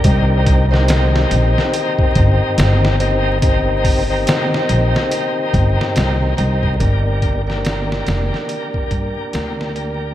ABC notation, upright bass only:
X:1
M:4/4
L:1/8
Q:"Swing 16ths" 1/4=71
K:Cm
V:1 name="Upright bass" clef=bass
C,,3 B,,, z G,,, G,,,2- | G,,,2 z B,,, z G,,, C,, C,, | G,,,3 F,,, z G,, D,,2 |]